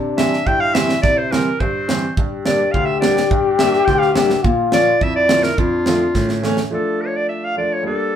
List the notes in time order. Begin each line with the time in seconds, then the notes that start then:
Already playing: C3 D4
0.17 E3 G3 C4 E5, snare
0.33 snare
0.45 G2 E4 G5, kick
0.60 F5
0.74 E3 G3 C4 E5, snare
0.89 snare
1.02 C3 D5, kick, snare
1.18 C5
1.31 E3 G3 C4 A#4, snare
1.60 G2 C5, kick
1.88 E3 G3 C4, snare
2.16 G2 G4, kick
2.45 G3 A#3 D4 D5, snare
2.72 D2 F5, kick
2.85 E5
3.00 G3 A#3 D4 D5, snare
3.17 snare
3.31 G2, kick
3.59 G3 A#3 D4 E5, snare
3.73 snare
3.85 D2 G5, kick, snare
3.99 F5, snare
4.13 G3 A#3 D4 E5, snare
4.30 snare
4.44 A#2 F4, kick
4.72 F3 A#3 C#4 D5, snare
5.01 F2 E4 E5, kick
5.16 D5
5.29 F3 A#3 C#4, snare
5.43 A#4, snare
5.58 F2 D4 F4, kick
5.86 F3 A3 C4, snare
6.15 A2 C#4, kick, snare
6.29 snare
6.43 E3 A3 C#4, snare
6.57 snare
6.71 F3 A3 D4 A4
7.01 C#5
7.16 D5
7.29 E5
7.45 F5
7.57 F3 A3 D4 D5
7.73 C#5
7.83 G3 A#3 A4
7.87 D4